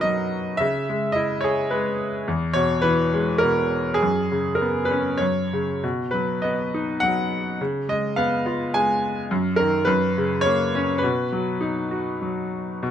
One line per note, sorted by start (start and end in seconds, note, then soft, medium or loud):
0.00 0.56 B2 soft
0.00 0.03 F#3 soft
0.00 0.58 F#3 soft
0.00 0.56 D#4 soft
0.00 0.57 F#4 soft
0.00 0.62 A#4 medium
0.00 0.61 B4 medium
0.00 0.61 D#5 medium
0.57 2.24 C#3 soft
0.57 1.16 E5 medium
0.89 1.71 G#3 soft
1.12 2.24 E4 soft
1.12 1.43 D#5 medium
1.41 2.25 G#4 soft
1.41 1.68 C#5 medium
1.71 2.26 G#3 soft
1.71 2.10 B4 medium
2.28 3.96 E2 medium
2.53 3.42 B2 soft
2.53 2.84 C#5 medium
2.82 3.96 E3 medium
2.82 3.43 B4 medium
3.14 3.97 G#3 soft
3.38 4.00 A#4 medium
3.43 3.99 B2 soft
3.94 4.52 G#4 medium
4.02 5.18 F#2 soft
4.32 5.19 C#3 soft
4.55 4.85 A#4 medium
4.61 5.20 B3 soft
4.85 5.16 B4 medium
4.91 5.21 C#4 soft
5.18 5.81 F#2 soft
5.18 5.63 C#5 medium
5.53 5.83 C#3 soft
5.83 7.56 B2 soft
6.11 7.02 F#3 soft
6.11 6.43 B4 medium
6.42 7.56 B3 soft
6.42 7.03 D#5 medium
6.74 7.58 D#4 soft
7.00 7.58 F#3 soft
7.00 7.55 F#5 medium
7.61 9.27 C#3 soft
7.89 8.73 G#3 soft
7.89 8.15 D#5 medium
8.16 9.27 B3 medium
8.16 8.75 F5 medium
8.46 9.28 F4 soft
8.74 9.29 G#3 soft
8.74 9.26 G#5 medium
9.31 9.86 F#2 medium
9.56 9.87 D#3 soft
9.56 9.87 A#4 medium
9.85 10.98 F#2 medium
9.85 10.45 B4 medium
10.18 11.00 C#3 soft
10.41 11.02 C#5 medium
10.46 11.01 A#3 soft
10.75 11.02 C#4 medium
10.98 12.46 B4 medium
11.03 12.79 B2 medium
11.32 12.20 F#3 soft
11.61 12.79 D#4 soft
11.91 12.80 F#4 soft
12.22 12.81 F#3 soft
12.83 12.91 B2 medium